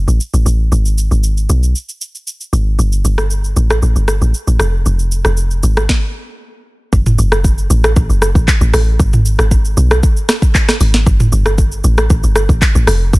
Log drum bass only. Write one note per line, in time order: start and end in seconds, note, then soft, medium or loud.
0.08 0.20 A1 medium
0.34 0.45 A1 medium
0.46 0.71 A1 medium
0.72 1.10 G#1 loud
1.11 1.48 G#1 medium
1.50 1.74 B1 medium
2.53 2.78 G#1 loud
2.79 3.04 G1 loud
3.05 3.54 G1 medium
3.56 3.81 A1 medium
3.82 3.95 A1 loud
3.96 4.21 G1 medium
4.22 4.34 A1 medium
4.47 4.59 A1 medium
4.60 4.85 F1 loud
4.86 5.23 F1 loud
5.25 5.62 F1 medium
5.63 5.88 G#1 medium
6.93 7.17 F#1 loud
7.19 7.68 F#1 loud
7.70 7.95 A1 loud
7.96 8.09 A1 loud
8.10 8.34 F#1 medium
8.35 8.47 A1 medium
8.61 8.73 A1 medium
8.74 8.98 A1 medium
9.00 9.37 G#1 loud
9.39 9.75 G#1 medium
9.77 10.02 B1 loud
10.81 11.05 G#1 loud
11.06 11.31 G1 loud
11.32 11.82 G1 loud
11.84 12.09 A1 medium
12.10 12.23 A1 loud
12.24 12.48 G1 medium
12.49 12.61 A1 loud
12.75 12.87 A1 medium
12.88 13.12 F1 loud
13.13 13.19 F1 loud